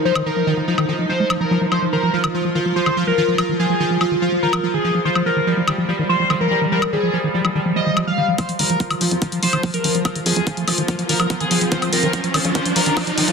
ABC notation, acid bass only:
X:1
M:4/4
L:1/16
Q:1/4=144
K:Ebmix
V:1 name="Acid bass" clef=bass
F, E, E, F, E, E, F, E, E, F, F, A, F, F, F, F, | F, F, E, F, F, E, F, F, E, F, F, E, F, F, E, F, | F, E, F, F, E, F, F, E, F, F, E, F, F, E, F, F, | E, F, F, E, F, F, E, F, F, E, F, F, E, F, F, E, |
F, F, E, F, F, E, F, F, E, F, F, E, F, F, E, F, | F, F, E, F, z E, F, F, E, F, F, E, F, F, E, F, | F, E, F, F, E, F, F, E, F, F, E, F, F, E, F, F, | E, F, F, E, F, F, E, F, E, F, F, E, F, F, E, F, |]